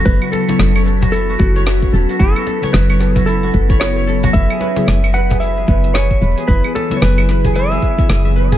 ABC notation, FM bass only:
X:1
M:4/4
L:1/8
Q:"Swing 16ths" 1/4=112
K:F#m
V:1 name="FM bass" clef=bass
F,,, z F,,,3 F,,,2 E,,, | F,,, z F,,,3 F,,,3 | F,,, z F,,,3 F,,,2 E,,, | F,,, z F,,,3 z F,,,2 |]